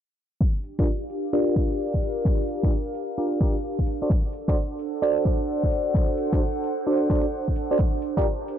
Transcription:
0.41 8.59 D4 medium
0.41 3.87 G4 medium
0.41 kick loud
0.64 open hi-hat loud
0.74 3.87 F5 medium
0.79 0.87 D4 medium
0.79 0.87 F4 medium
0.79 0.87 G4 medium
0.79 0.87 A#4 medium
0.79 0.87 D5 loud
0.79 kick loud
0.95 3.87 A#4 medium
1.10 open hi-hat loud
1.33 2.60 D4 medium
1.33 2.60 F4 medium
1.33 2.60 G4 medium
1.33 2.60 A#4 medium
1.33 2.60 D5 loud
1.56 kick medium
1.56 open hi-hat loud
1.94 kick medium
2.02 open hi-hat loud
2.25 kick loud
2.48 open hi-hat loud
2.63 2.72 D4 medium
2.63 2.72 F4 medium
2.63 2.72 G4 medium
2.63 2.72 A#4 medium
2.63 2.72 D5 medium
2.63 kick loud
2.95 open hi-hat loud
3.18 3.39 D4 medium
3.18 3.39 F4 medium
3.18 3.39 G4 medium
3.18 3.39 A#4 medium
3.18 3.39 D5 medium
3.41 3.56 D4 medium
3.41 3.56 F4 medium
3.41 3.56 G4 medium
3.41 3.56 A#4 medium
3.41 3.56 D5 medium
3.41 kick loud
3.41 open hi-hat loud
3.79 kick medium
3.87 open hi-hat loud
4.02 4.10 D4 medium
4.02 4.10 F#4 medium
4.02 4.10 A4 medium
4.02 7.79 A4 medium
4.02 4.10 C5 medium
4.02 4.10 D5 medium
4.10 kick loud
4.33 open hi-hat medium
4.45 4.56 D4 medium
4.45 4.56 F#4 medium
4.45 4.56 A4 medium
4.45 4.56 C5 medium
4.45 4.56 D5 loud
4.45 7.79 F#5 medium
4.45 kick loud
4.52 8.59 C5 medium
4.79 open hi-hat loud
5.02 6.29 D4 medium
5.02 6.29 F#4 medium
5.02 6.29 A4 medium
5.02 6.29 C5 medium
5.02 6.29 D5 loud
5.25 kick loud
5.25 open hi-hat medium
5.63 kick medium
5.71 open hi-hat loud
5.94 kick loud
6.18 open hi-hat medium
6.33 6.41 D4 medium
6.33 6.41 F#4 medium
6.33 6.41 A4 medium
6.33 6.41 C5 medium
6.33 6.41 D5 medium
6.33 kick loud
6.64 open hi-hat medium
6.87 7.08 D4 medium
6.87 7.08 F#4 medium
6.87 7.08 A4 medium
6.87 7.08 C5 medium
6.87 7.08 D5 medium
7.10 7.25 D4 medium
7.10 7.25 F#4 medium
7.10 7.25 A4 medium
7.10 7.25 C5 medium
7.10 7.25 D5 medium
7.10 kick loud
7.10 open hi-hat medium
7.48 kick medium
7.56 open hi-hat medium
7.71 7.78 D4 medium
7.71 7.78 F#4 medium
7.71 7.78 A4 medium
7.71 7.78 C5 medium
7.71 7.78 D5 medium
7.79 kick loud
7.88 8.59 G4 medium
8.02 open hi-hat medium
8.08 8.59 A#4 medium
8.17 8.25 D4 medium
8.17 8.25 F4 medium
8.17 8.25 G4 medium
8.17 8.26 A#4 medium
8.17 8.25 D5 loud
8.17 kick loud
8.48 8.59 F5 medium
8.48 open hi-hat loud

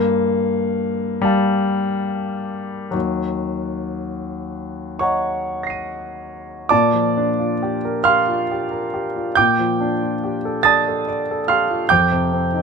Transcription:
0.00 2.88 G2 medium
0.00 1.25 A#3 medium
1.22 2.91 G3 medium
1.22 2.88 F5 soft
1.22 2.88 A5 soft
2.91 6.68 D#2 soft
2.91 5.01 F#3 medium
4.99 6.67 C#5 medium
4.99 6.68 D#5 soft
4.99 6.67 F#5 medium
4.99 6.68 A#5 soft
4.99 6.70 C#6 medium
5.63 6.68 A#6 soft
5.63 6.70 C7 soft
5.70 6.71 D#7 soft
6.69 9.32 A#2 medium
6.69 8.02 D5 medium
6.69 8.02 A5 medium
6.69 8.06 D6 medium
6.94 7.30 F3 soft
7.17 7.53 D4 soft
7.39 7.75 F4 soft
7.63 7.98 G4 soft
7.85 8.20 A#4 soft
8.04 8.42 G4 soft
8.04 9.31 F5 medium
8.04 9.31 C6 medium
8.04 9.35 F6 loud
8.28 8.63 F4 soft
8.52 8.85 G4 soft
8.71 9.06 A#4 soft
8.94 9.28 G4 soft
9.16 9.37 F4 soft
9.35 11.87 A#2 medium
9.35 10.62 G5 medium
9.35 10.62 D6 medium
9.35 10.65 G6 loud
9.59 9.93 F3 soft
9.81 10.14 D4 soft
10.03 10.36 F4 soft
10.24 10.58 G4 soft
10.45 10.79 A4 soft
10.63 11.00 D5 medium
10.63 11.05 A5 medium
10.63 11.04 D#6 medium
10.63 11.07 A6 loud
10.88 11.21 A4 soft
11.08 11.41 D5 soft
11.31 11.62 A4 soft
11.48 11.83 G4 soft
11.48 11.87 F5 medium
11.48 11.88 C6 medium
11.48 11.90 F6 medium
11.70 11.91 F4 soft
11.89 12.62 F2 medium
11.89 12.62 G5 medium
11.89 12.62 D6 medium
11.89 12.62 G6 loud
12.12 12.46 C3 soft
12.33 12.62 C4 soft
12.53 12.62 D#4 soft

